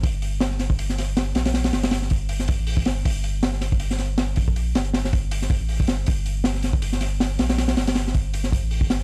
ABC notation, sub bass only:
X:1
M:4/4
L:1/16
Q:"Swing 16ths" 1/4=159
K:Gm
V:1 name="Sub bass" clef=bass
G,,,12- G,,,2 B,,,2- | B,,,2 G,,,8- G,,, A,,,3 G,,,2 | G,,,12- G,,,2 B,,,2- | B,,,2 G,,,8- G,,, A,,,3 G,,,2 |
G,,,12- G,,,2 B,,,2- | B,,,2 G,,,8- G,,, A,,,3 G,,,2 |]